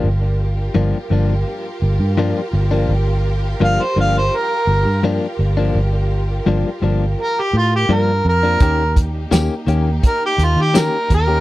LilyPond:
<<
  \new Staff \with { instrumentName = "Harmonica" } { \time 4/4 \key g \minor \tempo 4 = 84 r1 | r4 f''16 c''16 f''16 c''16 bes'4 r4 | r2 bes'16 g'16 f'16 g'16 bes'8 bes'8~ | bes'8 r4. bes'16 g'16 f'16 g'16 bes'8 bes'8 | }
  \new Staff \with { instrumentName = "String section" } { \time 4/4 \key g \minor <f' g' bes'>1~ | <f' g' bes'>1~ | <f' g' bes'>1 | <bes ees' g'>1 | }
  \new Staff \with { instrumentName = "Clean electric guitar" } { \time 4/4 \key g \minor r4 <g, f bes d'>16 r16 <g, f bes d'>16 r4 r16 <g, f bes d'>16 r8 <f bes d'>16 | r4 <g, f bes d'>16 r16 <g, f bes d'>16 r4 r16 <g, f bes d'>16 r8 <f bes d'>16 | r4 <g, f bes d'>16 r16 <g, f bes d'>16 r4 r16 <g, f bes d'>16 r8 <f bes d'>16 | <ees bes des' g'>16 r8. <ees bes des' g'>16 r16 <ees bes des' g'>16 r4 r16 <ees bes des' g'>16 r8 <bes des' g'>16 | }
  \new Staff \with { instrumentName = "Fingered electric bass" } { \clef bass \time 4/4 \key g \minor g,,4 g,,16 r16 g,,8 r8 g,,16 g,8 r16 g,,8 | g,,4 g,,16 r16 g,,8 r8 g,,16 g,8 r16 g,,8 | g,,4 g,,16 r16 g,,8 r8 a,8 g,8 f,8 | ees,4 ees,16 r16 ees,8 r8 ees,16 ees8 r16 ees,8 | }
  \new DrumStaff \with { instrumentName = "Drums" } \drummode { \time 4/4 r4 r4 r4 r4 | r4 r4 r4 r4 | r4 r4 r4 r4 | <hh bd>8 <hh bd>8 <hh sn tamb>8 hh8 <hh bd>8 hh8 <hh sn tamb>8 <hh bd>8 | }
>>